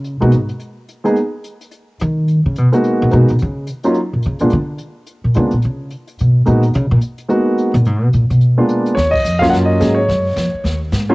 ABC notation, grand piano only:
X:1
M:4/4
L:1/8
Q:"Swing" 1/4=215
K:Ebm
V:1 name="Grand piano"
z8 | z8 | z8 | z8 |
z8 | z8 | z8 | z8 |
d e2 f g e2 d- | d4- d z3 |]
V:2 name="Grand piano"
z [A,B,CEG] z4 z [A,B,CEA] | z8 | z3 [A,B,CEG]3 [A,B,CEG] z | z3 [G,B,DEF] z3 [A,B,C=DF] |
z6 [A,B,C=DF] z | z6 [A,B,CEG] z | z4 [A,B,CEG]3 z | z4 z [A,B,C=DF]3 |
z3 [G,B,DF]3 [G,B,DA] z | z6 z [G,B,DF] |]